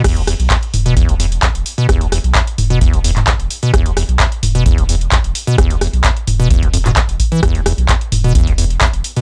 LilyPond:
<<
  \new Staff \with { instrumentName = "Acid bass" } { \clef bass \time 4/4 \key c \major \tempo 4 = 130 e,16 d,16 e,16 r16 e,16 r8 b,16 e,16 d,16 e,16 r16 e,16 r8 b,16 | e,16 d,16 e,16 r16 e,16 r8 b,16 e,16 d,16 e,16 r16 e,16 r8 b,16 | e,16 d,16 e,16 r16 e,16 r8 b,16 e,16 d,16 e,16 r16 e,16 r8 b,16 | e,16 d,16 e,16 r16 e,16 r8 b,16 e,16 d,16 f,16 b,16 e,16 r8 e16 |
e,16 d,16 e,16 r16 e,16 r8 b,16 e,16 d,16 e,16 r16 e,16 r8 b,16 | }
  \new Staff \with { instrumentName = "Sub bass" } { \clef bass \time 4/4 \key c \major e,,8. b,,16 r8 e,,8. e,,8. r16 e,,16 r8 | e,,8. b,,16 r8 e,,8. e,,8. r16 e,,16 r8 | e,,8. b,,16 r8 e,,8. e,,8. r16 e,,16 r8 | e,,8. b,,16 r8 e,,8. e,,8. r16 e,,16 r8 |
e,,8. b,,16 r8 e,,8. e,,8. r16 e,,16 r8 | }
  \new DrumStaff \with { instrumentName = "Drums" } \drummode { \time 4/4 <cymc hh bd ss>16 hh16 <hho ss>16 hh16 <hc hh bd>16 hh16 <hho toml>16 hh16 <hh bd>16 <hh bd>16 hho16 hh16 <hc hh bd>16 hh16 hho16 hh16 | <hh bd ss>16 hh16 <hho ss>16 hh16 <hc hh bd>16 hh16 <hho toml>16 hh16 <hh bd>16 <hh bd>16 hho16 <hc hh toml>16 <hc hh bd>16 hh16 hho16 hh16 | <hh bd ss>16 hh16 <hho ss>16 hh16 <hc hh bd>16 hh16 <hho toml>16 hh16 <hh bd>16 <hh bd>16 hho16 hh16 <hc hh bd>16 hh16 hho16 hh16 | <hh bd ss>16 hh16 <hho ss>16 hh16 <hc hh bd>16 hh16 <hho toml>16 hh16 <hh bd>16 <hh bd>16 hho16 <hc hh toml>16 <hc hh bd>16 hh16 <hho bd>16 hh16 |
<hh bd ss>16 hh16 <hho ss>16 hh16 <hc hh bd>16 hh16 <hho toml>16 hh16 <hh bd>16 <hh bd>16 hho16 hh16 <hc hh bd>16 hh16 hho16 hh16 | }
>>